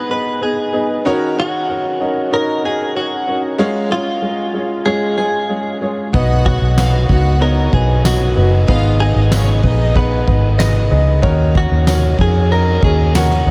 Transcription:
Already playing: G#2 B3 D#4 G#4 B4 D#5 F#5
0.09 B3 D#4 G#4 B4 D#5
0.41 B3 D#4 G#4 B4 D#5
0.73 B3 D#4 G#4 B4 D#5
1.05 D#3 C#4 D#4 F#4 A#4 C#5
1.36 C#4 D#4 F#4 A#4 C#5
1.68 C#4 D#4 F#4 A#4 C#5
2.00 C#4 D#4 F#4 A#4 D#5
2.31 C#4 D#4 F#4 A#4 D#5
2.63 C#4 D#4 F#4 G#4 A#4 C#5
2.95 C#4 D#4 F#4 A#4 D#5
3.27 C#4 D#4 F#4 A#4 C#5
3.58 G#3 C#4 F4 G#4 C#5
3.90 G#3 C#4 F4 G#4 C#5
4.22 G#3 C#4 F4 G#4 D#5
4.53 G#3 C#4 F4 G#4 C#5
4.85 G#3 C#4 F4 G#4 C#5
5.18 G#3 C#4 F4 G#4 C#5
5.49 G#3 C#4 F4 G#4 C#5
5.81 G#3 C#4 F4 G#4 C#5
6.13 B1 B2 B3 D#4 F#4 B4 D#5 F#5, kick, ride
6.44 B3 D#4 F#4 B4, kick
6.61 B1, ride
6.77 B3 D#4 F#4 B4 C#5 F5, snare, clap, ride, tambourine
7.08 C#2 B3 D#4 F#4 B4 D#5 F#5, kick, ride
7.26 ride
7.40 B3 D#4 F#4 A#4 C#5 D#5, ride
7.58 ride
7.72 B1 B3 D#4 F#4 G#4 B4 D#5, kick, ride
7.89 ride
8.03 B3 D#4 F#4 B4 D#5, snare, clap, tambourine
8.21 ride
8.36 F#1 B3 D#4 F#4 B4 D#5, ride
8.53 ride
8.68 G#1 G#2 B3 D#4 F4 G#4 B4 D#5 F5, kick, ride
9.00 D#4 G#4 D#5, ride
9.15 G#1, ride
9.31 B3 C#4 D#4 G#4 B4 C#5 D#5, snare, clap, tambourine
9.48 ride
9.63 A#1 B3 D#4 G#4 B4 D#5, kick, ride
9.80 ride
9.95 B3 D#4 G#4 B4 F#5, kick, ride
10.27 G#1 B3 D#4 G#4 B4 D#5, kick, ride
10.43 ride
10.59 B3 D#4 G#4 B4 D#5, snare, clap, ride, tambourine
10.91 C#2 B3 D#4 G#4 B4 D#5, ride
11.08 ride
11.22 D#2 D#3 C#4 D#4 F#4 A#4 C#5, kick, ride
11.39 ride
11.55 C#4 D#4 F#4 A#4 C#5, kick, ride
11.71 D#2, ride
11.86 C#4 D#4 F#4 A#4 C#5, snare, clap, ride, tambourine
12.04 ride
12.19 F2 C#4 D#4 F#4 G#4 A#4 D#5, kick, ride
12.35 ride
12.51 C#4 D#4 F#4 A#4 D#5, ride
12.67 ride
12.82 D#2 C#4 D#4 F#4 G#4 A#4 C#5, kick, ride
12.99 ride
13.15 C#4 D#4 F#4 A#4 C#5, snare, clap, ride, tambourine
13.30 snare, ride
13.46 D#2 C#4 D#4 F#4 A#4 D#5, ride

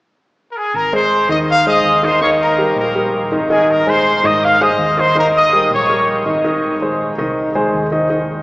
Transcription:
0.52 A#4
0.57 G#4 G#5
0.74 G#1 A#4 A#5
0.92 G#3 G#4 C5 C6
1.29 D#2 D#3 D#4 D#5 D#6
1.50 F5
1.66 G#3 G#4 C5 D#5 D#6
1.84 D#2
2.03 D#3 D#4 C5 D#5 C6
2.21 D#3 D#4 C#5 D#5 C#6
2.41 A#4 A#5
2.58 G3 G4 A#4
2.76 A#1 A#4 A#5
2.95 G3 G4 A#4
3.31 G#1 D#3 D#4 D#5
3.50 D#3 D#4 G#4 D#5 G#5
3.70 A#4 A#5
3.86 G#3 G#4 C5 C6
4.23 G#2 D#3 D#4 D#5 D#6
4.44 F5
4.61 G#3 G#4 C5 D#5 D#6
4.78 D#2
4.97 D#3 D#4 C5 D#5 C6
5.15 D#3 D#4 A#4 D#5 A#5
5.35 D#5 D#6
5.52 G3 G4 A#4
5.70 A#1 C#5 C#6
5.89 G3 G4 A#4
6.26 G#1 D#3 D#4 D#5
6.44 D#3 D#4 D#5
6.82 G#3 G#4 C5
7.18 C2 D#3 D#4 D#5
7.55 G#3 G#4 C5
7.73 D#2
7.92 D#3 D#4 D#5
8.10 D#3 D#4 D#5

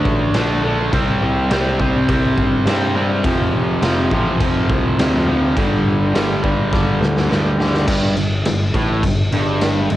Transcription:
Already playing: D3 A3 D4
0.05 A1, kick
0.34 A#1 D3 A3 D4, snare, crash
0.63 D3 A3 D4
0.92 C2 C3 G3 C4, kick, crash
1.22 C2
1.51 C2 C3 G3 C4, snare, crash
1.80 C2 C3 G3 C4, kick
2.09 C2 C3 G3 C4, kick, crash
2.37 G1, kick
2.66 G2 C3 G3 C4, snare, crash
2.95 C3 G3 C4
3.24 F1 F2 C3 F3, kick, crash
3.53 F1
3.82 F1 F2 C3 F3, snare, crash
4.11 A1 F2 C3 F3, kick
4.40 F1 F2 C3 F3, kick, crash
4.70 C2, kick
4.99 D2 F2 C3 F3, snare, crash
5.15 snare
5.27 F2 C3 F3
5.57 G1 G2 D3 G3, kick, crash
5.86 G1
6.14 G1 G2 D3 G3, snare, crash
6.44 G1 G2 D3 G3, kick
6.72 G1 G2 D3 G3, kick, snare
7.01 D2, snare
7.17 snare
7.30 D2 G2 D3 G3, snare
7.59 G2 D3 G3, snare
7.74 snare
7.88 G1 G2, kick, crash
8.17 G1 G2, crash
8.45 G1 G2, snare, crash
8.74 A1 A2, kick, snare, crash
9.03 G1 G2, kick, crash
9.32 G1 G2, crash
9.61 snare, crash
9.90 G1 G2, crash

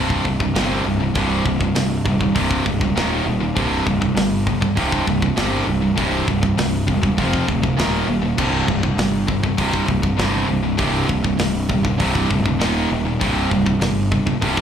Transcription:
Already playing: C1 C2 G2 C3
0.10 kick
0.25 C1 C2 G2, kick
0.40 C2 G2, kick
0.55 G1 C2 G2 C3, snare, open hi-hat
0.86 C1 C2 G2
1.00 C2 G2
1.15 C1 C2 G2 C3, kick, open hi-hat
1.46 C1 C2 G2, kick
1.61 C2 G2, kick
1.75 C1 C2 G2, snare, open hi-hat
2.06 D#1 C2 G2, kick
2.21 C2 G2, kick
2.35 C1 C2 G2 C3, kick, open hi-hat
2.51 kick
2.65 C#1 C2 G2, kick
2.81 C2 G2, kick
2.96 D#1 D#2 A#2 D#3, snare, open hi-hat
3.25 D#1 D#2 A#2
3.40 D#2 A#2
3.55 C1 C2 G2 C3, kick, open hi-hat
3.85 C1 C2 G2, kick
4.01 C2 G2, kick
4.16 G1 C2 G2, snare, open hi-hat
4.47 C2 G2, kick
4.61 C2 G2, kick
4.77 C1 C2 G2 C3, kick, open hi-hat
4.92 kick
5.07 C1 C2 G2, kick
5.22 C2 G2, kick
5.36 G1 C2 G2 C3, snare, open hi-hat
5.67 C1 C2 G2
5.81 C2 G2
5.95 C1 C2 G2 C3, kick, open hi-hat
6.27 C1 C2 G2, kick
6.42 C2 G2, kick
6.57 C1 C2 G2, snare, open hi-hat
6.87 E1 C2 G2, kick
7.02 C2 G2, kick
7.17 F1 F2 C3 F3, kick, open hi-hat
7.33 kick
7.48 D1 F2 C3, kick
7.62 F2 C3, kick
7.77 D#1 D#2 A#2 D#3, snare, open hi-hat
8.07 D#1 D#2 A#2
8.22 D#2 A#2
8.37 C1 C2 G2 C3, kick, crash
8.67 C1 C2 G2, kick
8.83 C2 G2, kick
8.98 G1 C2 G2, snare, open hi-hat
9.27 C2 G2, kick
9.44 C2 G2, kick
9.57 C1 C2 G2 C3, kick, open hi-hat
9.73 kick
9.88 C1 C2 G2, kick
10.02 C2 G2, kick
10.17 G1 C2 G2 C3, snare, open hi-hat
10.48 C1 C2 G2
10.63 C2 G2
10.77 C1 C2 G2 C3, kick, open hi-hat
11.07 C1 C2 G2, kick
11.24 C2 G2, kick
11.39 C1 C2 G2, snare, open hi-hat
11.69 D#1 C2 G2, kick
11.85 C2 G2, kick
12.00 C1 C2 G2 C3, kick, open hi-hat
12.15 kick
12.31 D1 C2 G2, kick
12.46 C2 G2, kick
12.59 D#1 D#2 A#2 D#3, snare, open hi-hat
12.91 D#1 D#2 A#2
13.05 D#2 A#2
13.19 C1 C2 G2 C3, kick, open hi-hat
13.51 C1 C2 G2, kick
13.66 C2 G2, kick
13.81 G1 C2 G2, snare, open hi-hat
14.12 C2 G2, kick
14.26 C2 G2, kick
14.42 C1 C2 G2 C3, kick, open hi-hat
14.57 kick

